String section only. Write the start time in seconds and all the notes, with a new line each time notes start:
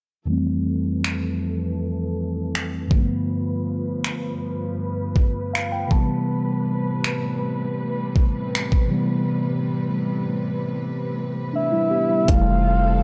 0.28 F2 E3 A4
2.91 G2 F3 B4
5.91 A2 C3 G3
12.28 E3 C4 A4